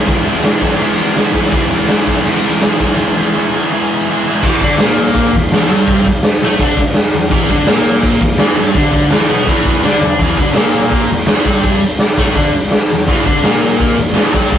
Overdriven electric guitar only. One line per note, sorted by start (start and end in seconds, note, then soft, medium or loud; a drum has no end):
0.00 0.11 E4 medium
0.08 0.44 E3 loud
0.08 0.27 G#3 loud
0.08 0.27 B3 medium
0.08 0.25 E4 loud
0.25 0.45 G#3 medium
0.25 0.46 B3 medium
0.25 0.46 E4 medium
0.44 0.79 E3 medium
0.44 0.65 G#3 medium
0.44 0.64 B3 medium
0.44 0.62 E4 medium
0.62 0.80 G#3 medium
0.62 0.81 B3 medium
0.62 0.82 E4 medium
0.80 1.16 E3 medium
0.80 1.17 G#3 loud
0.80 1.18 B3 loud
0.80 1.19 E4 loud
1.16 1.51 E3 medium
1.16 1.36 G#3 medium
1.16 1.34 B3 medium
1.16 1.33 E4 medium
1.34 1.52 G#3 medium
1.34 1.52 B3 medium
1.34 1.53 E4 medium
1.51 1.88 E3 loud
1.51 1.72 G#3 loud
1.51 1.71 B3 loud
1.51 1.69 E4 loud
1.69 1.88 G#3 medium
1.69 1.89 B3 medium
1.69 1.89 E4 medium
1.88 2.25 E3 medium
1.88 2.09 G#3 medium
1.88 2.08 B3 medium
1.88 2.07 E4 medium
2.07 2.26 G#3 medium
2.07 2.27 B3 medium
2.07 2.27 E4 medium
2.25 2.61 E3 medium
2.25 2.61 G#3 medium
2.25 2.62 B3 loud
2.25 2.63 E4 loud
2.61 2.96 E3 medium
2.61 2.81 G#3 medium
2.61 2.80 B3 medium
2.61 2.79 E4 medium
2.79 2.96 G#3 medium
2.79 2.98 B3 medium
2.79 2.98 E4 medium
2.97 3.33 E3 loud
2.97 3.17 G#3 medium
2.97 3.16 B3 medium
2.97 3.15 E4 medium
3.16 3.36 G#3 medium
3.16 3.37 B3 medium
3.16 3.37 E4 medium
3.36 3.70 E3 medium
3.36 3.57 G#3 medium
3.36 3.55 B3 medium
3.36 3.54 E4 medium
3.55 3.71 G#3 medium
3.55 3.72 B3 medium
3.55 3.73 E4 medium
3.71 4.07 E3 loud
3.71 4.09 G#3 loud
3.71 4.09 B3 medium
3.71 4.10 E4 loud
4.08 4.42 E3 medium
4.08 4.29 G#3 medium
4.08 4.27 B3 medium
4.08 4.25 E4 medium
4.26 4.44 G#3 medium
4.26 4.44 B3 medium
4.26 4.42 E4 medium
4.44 4.61 E2 medium
4.44 4.62 E3 loud
4.62 4.79 D3 medium
4.62 4.79 D4 loud
4.81 5.34 A#2 medium
4.81 5.34 A#3 loud
5.36 5.49 E2 medium
5.53 5.69 E2 loud
5.53 5.71 E3 loud
5.69 6.05 G2 medium
5.69 6.06 G3 loud
6.06 muted overdriven electric guitar stroke medium
6.42 6.59 A2 medium
6.42 6.60 A3 loud
6.61 6.78 D3 medium
6.61 6.79 D4 loud
7.14 7.28 E2 medium
7.30 7.49 E2 loud
7.30 7.49 E3 loud
7.50 7.67 D3 loud
7.50 7.68 D4 loud
7.67 8.21 A#2 medium
7.67 8.21 A#3 loud
8.20 8.35 E2 medium
8.37 8.56 E2 loud
8.37 8.57 E3 loud
8.57 8.75 G2 medium
8.57 8.75 G3 loud
8.76 9.11 D3 loud
8.76 9.12 D4 loud
9.10 9.28 E2 medium
9.10 9.29 E3 loud
9.27 9.46 B2 loud
9.27 9.47 B3 loud
9.47 9.83 E2 medium
9.47 9.83 E3 loud
9.84 10.19 D3 medium
9.84 10.20 D4 loud
10.21 10.38 E2 loud
10.21 10.38 E3 loud
10.39 10.56 D3 medium
10.39 10.57 D4 loud
10.56 11.09 A#2 medium
10.56 11.10 A#3 loud
11.11 11.25 E2 medium
11.26 11.45 E2 loud
11.26 11.45 E3 loud
11.46 11.81 G2 medium
11.46 11.82 G3 loud
11.81 muted overdriven electric guitar stroke medium
12.18 12.35 A2 medium
12.18 12.36 A3 loud
12.35 12.53 D3 medium
12.35 12.53 D4 loud
12.91 13.05 E2 medium
13.07 13.25 E2 medium
13.07 13.25 E3 loud
13.24 13.42 D3 loud
13.24 13.43 D4 loud
13.44 13.97 A#2 loud
13.44 13.97 A#3 loud
13.97 14.12 E2 medium
14.14 14.32 E2 loud
14.14 14.32 E3 loud
14.33 14.58 G2 medium
14.33 14.58 G3 loud